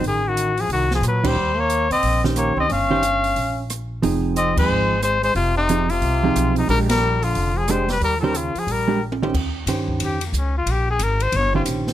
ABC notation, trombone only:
X:1
M:4/4
L:1/16
Q:"Swing" 1/4=181
K:Ebmix
V:1 name="Trombone" clef=bass
E,2 E,4 F,2 E,2 F,2 ^F,2 G,2- | G,2 B,4 C4 z2 B,2 C2 | D12 z4 | z4 C2 A,6 A,2 A,2 |
C,2 C,4 C,8 C,2 | G,2 G,4 =D,4 F,2 A,2 G,2 | G,3/2 F,/2 G,2 D,2 F,2 G,4 z4 | z16 |
z16 |]